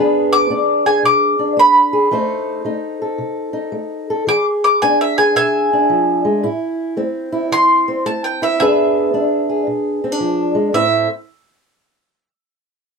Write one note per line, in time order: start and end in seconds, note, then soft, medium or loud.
0.00 0.46 E3 medium
0.00 0.49 B3 medium
0.00 0.50 D4 medium
0.00 0.85 G#4 medium
0.00 2.10 B4 medium
0.33 0.84 D6 medium
0.50 1.00 B3 medium
0.50 1.38 D4 medium
0.86 1.92 G#4 medium
0.86 1.03 G#5 medium
1.03 1.53 B2 medium
1.03 1.57 D6 medium
1.39 2.09 D4 medium
1.57 2.07 B3 medium
1.57 2.63 B5 medium
1.93 2.09 G#4 medium
2.11 2.61 F3 medium
2.11 2.64 A3 medium
2.11 2.64 D#4 medium
2.11 3.01 A4 medium
2.11 4.26 C5 medium
2.65 3.15 A3 medium
2.65 3.52 D#4 soft
3.02 4.09 A4 medium
3.18 3.69 C3 medium
3.53 4.24 D#4 medium
3.72 4.23 A3 medium
4.10 4.25 A4 medium
4.27 4.77 E3 medium
4.27 5.17 G#4 medium
4.27 4.45 D6 medium
4.64 4.81 D6 medium
4.82 5.32 B3 medium
4.82 5.72 D4 medium
4.82 4.99 G#5 medium
5.01 5.17 E5 medium
5.18 6.41 G#4 medium
5.18 5.35 G#5 medium
5.35 5.85 B2 medium
5.35 6.93 E5 medium
5.35 6.93 G#5 medium
5.73 6.42 D4 medium
5.90 6.25 F3 medium
6.25 6.43 G#3 medium
6.43 6.93 A2 medium
6.43 7.32 E4 medium
6.97 7.47 A3 medium
6.97 7.87 C4 medium
7.32 8.42 E4 medium
7.52 8.01 E3 medium
7.52 8.04 C6 loud
7.88 8.59 C4 medium
8.06 8.55 A3 medium
8.06 8.23 A5 medium
8.24 8.41 G5 medium
8.42 8.61 E4 medium
8.42 8.59 E5 medium
8.60 9.10 E3 medium
8.60 9.12 B3 medium
8.60 9.13 D4 medium
8.60 9.48 G#4 medium
8.60 10.74 B4 medium
8.60 9.64 E5 medium
9.14 9.63 B3 medium
9.14 10.03 D4 medium
9.49 10.73 G#4 medium
9.67 10.17 B2 medium
10.04 10.12 C4 medium
10.12 10.74 D4 medium
10.20 10.56 F3 medium
10.55 10.74 G#3 medium
10.73 11.06 A2 medium
10.73 11.06 A3 medium
10.73 11.07 C4 medium
10.73 11.07 E4 medium
10.73 11.08 C5 medium
10.73 11.08 E5 medium